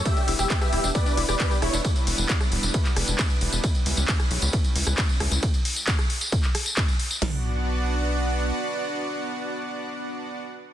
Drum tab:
RD |x---x---x---x---|x---x---x---x---|x---x---x---x---|x---x---x---x---|
HH |xxoxxxoxxxo-xxox|xxoxxxoxxxoxxxox|xxoxxxoxxxo-xxox|xxoxxxoxxxoxxxox|
TB |xx-xxx-xxx-xxx-x|xx-xxx-xxx-xxx-x|xx-xxx-xxx-xxx-x|-x-x-x-xxx-x-x-x|
CP |----x-------x---|----x----x--x---|----x-------x---|----x----x--x---|
SD |-----r-----r--r-|-----r----r-----|-----r-----r--r-|-----r----r-----|
FT |----------------|----------------|----------------|----------------|
BD |o---o---o---o---|o---o---o---o---|o---o---o---o---|o---o---o---o---|

RD |----------------|----------------|
HH |o---------------|----------------|
TB |----------------|----------------|
CP |----------------|----------------|
SD |o---------------|----------------|
FT |o---------------|----------------|
BD |----------------|----------------|